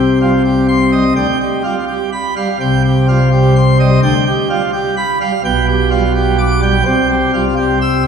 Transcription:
Already playing: C2 C3 G4
0.21 G3 F4
0.45 G4
0.68 C6
0.92 G3 D#5
1.16 D2 D3 G5
1.41 G4
1.64 G3 F4
1.88 G4
2.12 B5
2.37 G3 F5
2.60 C2 C3 G5
2.85 G4
3.08 G3 F4
3.32 G4
3.56 C6
3.80 G3 D#5
4.03 D2 D3 G5
4.27 G4
4.50 G3 F4
4.73 G4
4.97 B5
5.21 G3 F5
5.45 B1 B2 G5
5.68 G4
5.91 G3 F4
6.15 G4
6.38 D6
6.62 G3 G5
6.85 C2 C3 G5
7.09 G4
7.34 G3 F4
7.56 G4
7.81 E6

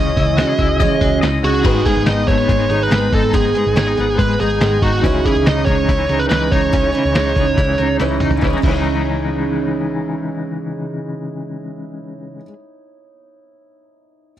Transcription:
Already playing: C#2 C#3 E3 G#3 C#4 E4 G#4 C#5 D#5
0.16 C#2 E4, kick, open hi-hat
0.37 G#3 C#4 D#4 F#4 G#4, snare, open hi-hat
0.47 G#4
0.58 C#2 E4, kick, open hi-hat
0.80 C#3 E3 G#3 C#4 D#4 G#4 D#5, kick, open hi-hat
1.01 C#2 F#4 G#4, kick, open hi-hat
1.21 C#2 G#3 C#4 D#4 E4 G#4 D#5, snare, open hi-hat
1.43 C#2 G#3 C#4 D#4 F#4 G#4, open hi-hat
1.54 G#4
1.62 G#1 G#2 D#3 G#3 B3 D#4 G#4 B4, kick, closed hi-hat, crash
1.85 G#3 B3 D#4 G#4, kick, closed hi-hat
1.97 G#1
2.06 G#1 G#2 D#3 G#3 B3 D#4 G#4 D#5, snare, closed hi-hat
2.27 G#1 G#3 A3 B3 D#4 G#4 C#5, kick, closed hi-hat
2.38 B3
2.48 G#1 G#3 B3 D#4 G#4, kick, closed hi-hat
2.69 G#1 G#3 B3 D#4 G#4, closed hi-hat
2.83 B4
2.91 G#1 G#2 D#3 G#3 B3 D#4 G#4, snare, closed hi-hat
3.12 G#1 D#4 A4, kick, open hi-hat
3.33 G#1 G#2 D#3 G#3 B3 D#4 G#4, kick, closed hi-hat
3.54 G#3 B3 D#4 G#4, closed hi-hat
3.67 G#1
3.76 G#1 G#2 D#3 G#3 B3 C#4 D#4 G#4, snare, closed hi-hat
3.87 D#4
3.97 G#1 G#3 B3 D#4 G#4, closed hi-hat
4.18 G#1 G#3 B3 D#4 G#4 B4, kick, closed hi-hat
4.40 G#1 G#3 B3 D#4 G#4, closed hi-hat
4.61 G#1 G#2 D#3 G#3 B3 D#4 G#4, snare, closed hi-hat
4.82 G#1 D#4 F#4, kick, open hi-hat
5.01 C#2 C#3 D#4 E4 C#5, kick, closed hi-hat
5.05 E3 G#3 C#4 D#4 G#4
5.25 E3 G#3 C#4 D#4 G#4, kick, closed hi-hat
5.36 C#2
5.46 C#2 C#3 E3 G#3 C#4 D#4 G#4 D#5, snare, closed hi-hat
5.66 C#2 G#3 C#4 D#4 G#4 C#5, kick, closed hi-hat
5.89 C#2 E3 G#3 C#4 D#4 G#4, kick, closed hi-hat
6.09 C#2 G#3 C#4 D#4 G#4, closed hi-hat
6.19 B4
6.29 C#2 C#3 E3 G#3 C#4 D#4 G#4 B4, snare, closed hi-hat
6.51 C#2 D#4 C#5, kick, open hi-hat
6.72 C#2 C#3 E3 G#3 C#4 D#4 G#4, kick, closed hi-hat
6.93 E3 G#3 C#4 D#4 G#4, closed hi-hat
7.05 C#2
7.15 C#2 C#3 E3 G#3 C#4 D#4 G#4, snare, closed hi-hat
7.35 C#2 G#3 C#4 D#4 G#4, kick, closed hi-hat
7.57 C#2 E3 G#3 C#4 D#4 G#4, kick, closed hi-hat
7.78 C#2 G#3 C#4 D#4 G#4, closed hi-hat
8.00 C#2 C#3 E3 G#3 C#4 D#4 E4 G#4 C#5, snare, closed hi-hat
8.20 C#2 D#4, mid tom, open hi-hat
8.31 floor tom
8.36 C#3 D#4
8.41 C#2 E3 G#3 E4 C#5, kick, snare
8.47 G#3 C#4 D#4
8.53 D#4 G#4
8.57 C#3 D#4
8.62 C#2 E3 G#3 E4, kick, crash
8.68 C#4 D#4 C#5
8.72 G#3 G#4
8.78 D#4

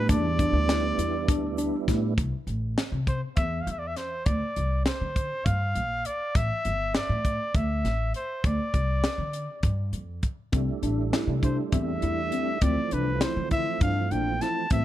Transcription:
Already playing: A2 G3 B3 D4 E4
0.09 E2 D4 D5, kick, closed hi-hat, shaker
0.39 D4, kick, closed hi-hat, shaker
0.53 D2
0.68 E4, snare, closed hi-hat, shaker
0.98 E2 E4, closed hi-hat, shaker
1.28 D4, kick, closed hi-hat
1.42 D2
1.58 D4, closed hi-hat, shaker
1.88 A2 E4, kick, snare, closed hi-hat, shaker
2.18 C2, kick, closed hi-hat
2.47 A1, closed hi-hat
2.78 snare, closed hi-hat
2.92 C3
3.07 C5, kick, closed hi-hat
3.37 E2 E5, kick, closed hi-hat
3.61 F5
3.67 E2 E5, closed hi-hat
3.79 D5
3.87 E5
3.97 C5, snare, closed hi-hat
4.26 D2 D5, kick, closed hi-hat
4.56 C2, closed hi-hat
4.86 C5, snare, closed hi-hat
5.01 D3
5.16 kick, closed hi-hat
5.45 G2 F5, kick, closed hi-hat
5.75 A#1, closed hi-hat
6.05 D5, closed hi-hat
6.35 A1 E5, kick, closed hi-hat
6.65 G1, closed hi-hat
6.95 D5, snare, closed hi-hat
7.09 A2
7.25 kick, closed hi-hat
7.55 D2 E5, kick, closed hi-hat
7.85 A1, snare, closed hi-hat
8.14 C5, closed hi-hat
8.44 D2 D5, kick, closed hi-hat
8.74 C2, kick, closed hi-hat
9.04 snare, closed hi-hat
9.18 D3
9.33 closed hi-hat
9.63 G2, kick, closed hi-hat
9.93 F2, closed hi-hat
10.23 kick, closed hi-hat
10.52 C2 G3 A3 C4 D4 E4, kick, closed hi-hat
10.82 A1 D4, closed hi-hat
11.13 E4, snare, closed hi-hat
11.27 C3
11.43 D4 C5, kick, closed hi-hat
11.72 E2 C4 E5, kick, closed hi-hat
12.02 E2 E4, closed hi-hat
12.32 C4, closed hi-hat
12.61 D2 E3 F3 A3 C4 D5, kick, closed hi-hat
12.91 C2 D4 B4, closed hi-hat
13.21 E4 C5, snare, closed hi-hat
13.37 D3
13.51 E4 E5, kick, closed hi-hat
13.81 G2 D4 F5, kick, closed hi-hat
14.11 A#1 D4 G5, closed hi-hat
14.41 E4 A5, snare, closed hi-hat
14.70 A1 E3 G3 B3 C4 E5, kick, closed hi-hat

